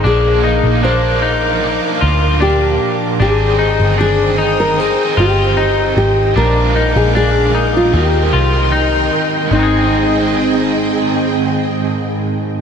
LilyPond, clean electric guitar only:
\new Staff \with { instrumentName = "Clean electric guitar" } { \time 4/4 \key aes \lydian \tempo 4 = 76 d'8 ees'8 d'8 ees'4 f'8 d'4 | d'8 ees'8 d'8 ees'4 f'8 ees'4 | d'8 ees'8 d'8 ees'4 f'8 ees'4 | <aes c' ees' aes'>1 | }